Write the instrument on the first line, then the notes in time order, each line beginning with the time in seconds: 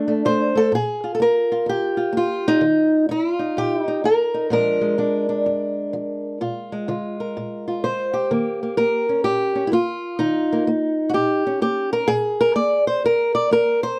steel-string acoustic guitar
Already playing: F2 D4
0.08 A3
0.25 F2 A3 C5
0.55 A3 A4
0.72 A#2 G#4
1.04 F4
1.15 A4
1.20 A#3 A#4
1.52 F4
1.66 F2 G4
1.97 F4
2.13 A#3
2.17 F4
2.48 D#4
2.61 D#3
3.09 D#4 E4
3.31 F4
3.39 D#4
3.57 A#2 G4
3.74 E4
3.87 D#4
4.04 D#4 A#4
4.34 D#4
4.50 A#2 F3 G#3 D4 A#4
4.81 G#3
4.98 F3 D4
5.29 D4
5.46 F2
5.93 F3
6.41 A#2 F4
6.72 G#3
6.88 D3 F4
7.20 A#4
7.37 A#2
7.68 F4
7.84 D3 C5
8.14 G4
8.31 D#3 A#3
8.63 A#3
8.77 A#3 A#4
9.09 C#4
9.24 A#2 G4
9.55 C#4
9.67 E4
9.72 A#3 F4
10.19 D#3 D#4
10.53 A#3
10.67 A#3
11.09 F#4
11.14 A#2 G4
11.47 C#4
11.62 A#3 G4
11.93 A#4
12.08 A#2 G#4
12.41 A#4
12.56 A#3 D5
12.87 C5
13.04 F2 A#4
13.35 D5
13.51 A#3 A#4
13.83 C5